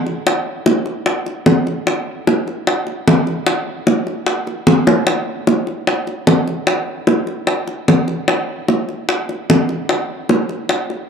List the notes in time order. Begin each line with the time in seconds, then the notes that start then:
0.07 high bongo
0.27 high bongo
0.66 high bongo
0.86 high bongo
1.06 high bongo
1.26 high bongo
1.46 high bongo, low bongo
1.67 high bongo
1.87 high bongo
2.27 high bongo
2.47 high bongo
2.67 high bongo
2.87 high bongo
3.08 high bongo, low bongo
3.27 high bongo
3.47 high bongo
3.87 high bongo
4.07 high bongo
4.26 high bongo
4.47 high bongo
4.67 high bongo, low bongo
4.87 high bongo
5.07 high bongo
5.47 high bongo
5.67 high bongo
5.87 high bongo
6.07 high bongo
6.27 high bongo, low bongo
6.47 high bongo
6.67 high bongo
7.07 high bongo
7.27 high bongo
7.47 high bongo
7.67 high bongo
7.88 high bongo, low bongo
8.08 high bongo
8.28 high bongo
8.68 high bongo
8.89 high bongo
9.09 high bongo
9.29 high bongo
9.50 high bongo, low bongo
9.69 high bongo
9.89 high bongo
10.29 high bongo
10.49 high bongo
10.69 high bongo
10.90 high bongo